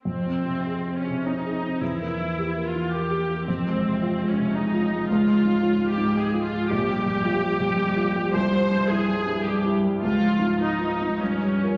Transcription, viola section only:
\new Staff \with { instrumentName = "Viola section" } { \time 3/4 \key f \minor \tempo 4 = 109 c'4. des'8 ees'4 | e'4. f'8 g'4 | c'4. des'8 ees'4 | f'4. g'8 aes'8 f'8 |
g'2. | c''4 aes'4 g'8 r8 | f'4 ees'4 des'4 | }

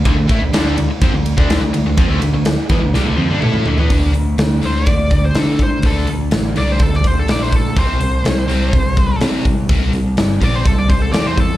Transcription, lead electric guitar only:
\new Staff \with { instrumentName = "Lead electric guitar" } { \time 4/4 \key d \minor \tempo 4 = 124 r1 | r1 | r4. c''16 d''4 c''16 a'8 c''8 | a'8 r4 d''16 c''16 a'16 d''16 c''16 a'16 d''16 c''16 a'8 |
c''2. r4 | r4. d''16 c''16 a'16 d''16 c''16 a'16 d''16 c''16 a'8 | }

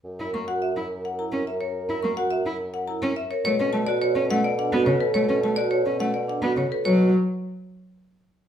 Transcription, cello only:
\new Staff \with { instrumentName = "Cello" } { \time 3/4 \key b \minor \tempo 4 = 106 r16 e'16 ais16 r8 e'16 r8. cis'16 r8 | r16 e'16 ais16 r8 e'16 r8. cis'16 r8 | a16 cis'16 a16 r8 cis'16 a16 r8 b16 cis16 r16 | a16 cis'16 a16 r8 cis'16 a16 r8 b16 cis16 r16 |
fis8 r2 r8 | }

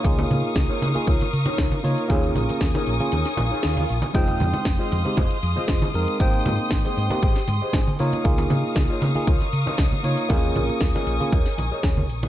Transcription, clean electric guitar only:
\new Staff \with { instrumentName = "Clean electric guitar" } { \time 4/4 \key des \lydian \tempo 4 = 117 << { r1 | r1 | r1 | r4. c''16 ees''16 g''4 aes''8 bes''8 |
r1 | r2. aes''4 | } \\ { <ees' f' bes' des''>4 r16 <ees' f' bes' des''>16 r8 <ees' f' bes' des''>8 r16 <ees' f' bes' des''>8. r8 | <ees' aes' bes' des''>8 r8. <ees' aes' bes' des''>16 r8 <ees' aes' bes' des''>8 r16 <ees' aes' bes' des''>8. r8 | <f' aes' c'' ees''>8 r8. <f' aes' c'' ees''>16 r8 <f' aes' c'' ees''>8 r16 <f' aes' c'' ees''>8. r8 | <g' aes' c'' ees''>8 r8. <g' aes' c'' ees''>16 r8 <g' aes' c'' ees''>8 r16 <g' aes' c'' ees''>8. <f' bes' des'' ees''>8~ |
<f' bes' des'' ees''>4 r16 <f' bes' des'' ees''>16 r8 <f' bes' des'' ees''>8 r16 <f' bes' des'' ees''>8. r8 | <aes' bes' des'' ees''>8 r8. <aes' bes' des'' ees''>16 r8 <aes' bes' des'' ees''>8 r16 <aes' bes' des'' ees''>8. r8 | } >> }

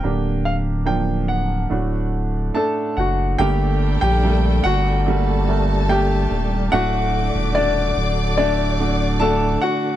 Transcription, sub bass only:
\new Staff \with { instrumentName = "Sub bass" } { \clef bass \time 4/4 \key d \phrygian \tempo 4 = 72 d,,2 d,,4 r8 fis,,8 | \key g \minor g,,8. bes,,8. g,,2 ees,,8 | d,,8. ees,,8. d,,2 r8 | }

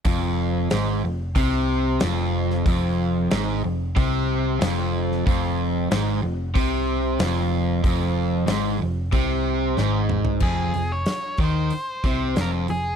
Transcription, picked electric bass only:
\new Staff \with { instrumentName = "Picked electric bass" } { \clef bass \time 4/4 \key f \minor \tempo 4 = 93 f,,4 aes,,8 f,,8 c,4 f,,4 | f,,4 aes,,8 f,,8 c,4 f,,4 | f,,4 aes,,8 f,,8 c,4 f,,4 | f,,4 aes,,8 f,,8 c,4 aes,,4 |
f,,8 f,,8 r8 ees,8 r8 c,8 f,,8 f,,8 | }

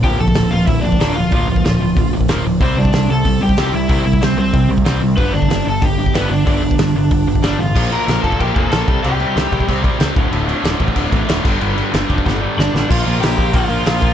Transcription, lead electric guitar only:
\new Staff \with { instrumentName = "Lead electric guitar" } { \time 4/4 \key bes \lydian \tempo 4 = 187 <g' g''>8 <a' a''>4 <f' f''>8 <e' e''>8 <d' d''>4 <f' f''>8~ | <f' f''>2~ <f' f''>8 r4. | <c' c''>8 <d' d''>4 <a' a''>4 <g' g''>4 <e' e''>8 | <e' e''>4 <c' c''>8 <c' c''>4 r4. |
<b b'>8 <d' d''>4 <a' a''>8 <g' g''>4 <b b'>8 <d' d''>8~ | <d' d''>2. <d' d''>8 <f' f''>8~ | <f' f''>8 <bes' bes''>4 <a' a''>8 <g' g''>8 <a' a''>4. | <g' g''>2 r2 |
r1 | r2. <d' d''>4 | <f' f''>4 <g' g''>4 <f' f''>4 <f' f''>4 | }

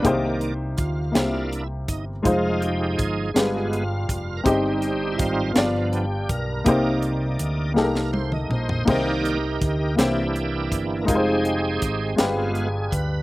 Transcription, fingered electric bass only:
\new Staff \with { instrumentName = "Fingered electric bass" } { \clef bass \time 6/8 \key c \minor \tempo 4. = 54 c,4 d,8 c,4 g,,8 | f,,4 g,,8 g,,4 f,,8 | g,,4 aes,,8 g,,4 b,,8 | c,4 d,8 c,4 bes,,8 |
c,4 d,8 c,4 g,,8 | f,,4 aes,,8 g,,4 d,8 | }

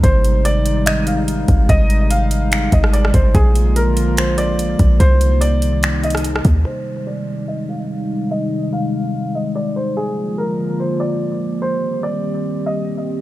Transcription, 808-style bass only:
\new Staff \with { instrumentName = "808-style bass" } { \clef bass \time 4/4 \key aes \lydian \tempo 4 = 145 aes,,2.~ aes,,8 aes,,8 | aes,,2~ aes,,8 aes,,4 aes,,8 | bes,,2.~ bes,,8 bes,,8 | c,2.~ c,8 ees,8 |
r1 | r1 | r1 | r1 | }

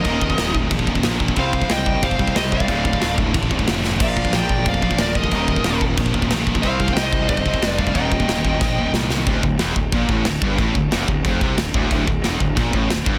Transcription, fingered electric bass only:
\new Staff \with { instrumentName = "Fingered electric bass" } { \clef bass \time 4/4 \key d \phrygian \tempo 4 = 182 ees,,4 ees,,4 bes,,8 ees,,8 bes,,4 | c,4 c,4 g,,8 c,8 c,4 | d,,4 d,,4 a,,8 d,,8 f,,4 | bes,,4 bes,,4 f,,8 bes,,8 d,,4 |
ees,,4 ees,,4 bes,,8 ees,,8 bes,,4 | c,4 c,4 g,,8 c,8 f,,4 | ees,,4 ees,,4 bes,,8 ees,,8 c,4 | d,,8 d,,8 e,,8 d,,8 bes,,8 a,,8 d,,8 g,,8 |
a,,8 d,,8 e,,8 d,,8 f,,8 c,8 d,,8 d,,8 | d,,8 d,,8 e,,8 d,,8 bes,,8 a,,8 d,,8 g,,8 | }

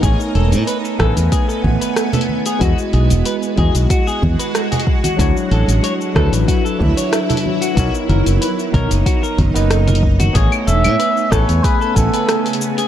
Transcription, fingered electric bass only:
\new Staff \with { instrumentName = "Fingered electric bass" } { \clef bass \time 4/4 \key a \major \tempo 4 = 93 a,,16 r16 e,,16 a,16 r8 a,,16 e,16 r8 a,,16 r4 r16 | e,16 r16 b,,16 e,,16 r8 e,16 b,,16 r8 e,16 r4 r16 | d,16 r16 a,,16 a,,16 r8 d,16 a,,16 r8 d,16 r4 r16 | b,,16 r16 fis,,16 fis,,16 r8 b,,16 fis,,16 r8 fis,,16 fis,,4~ fis,,16 |
a,,16 r16 e,,16 a,16 r8 a,,16 e,16 r8 a,,16 r4 r16 | }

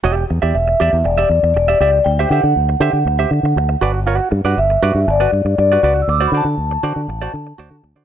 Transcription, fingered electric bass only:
\new Staff \with { instrumentName = "Fingered electric bass" } { \clef bass \time 4/4 \key e \minor \tempo 4 = 119 e,,8 e,16 e,16 e,,8 e,16 e,16 e,,8 e,16 e,16 e,,8 cis,8 | d,8 d16 d16 d,8 d16 d16 d,8 d16 d16 d,8 g,,8~ | g,,8 g,16 g,16 g,,8 g,16 g,16 g,,8 g,16 g,16 g,8 cis,8 | d,8 d16 d16 d,8 d16 d16 a,,8 d8 d,16 d16 d,16 d16 | }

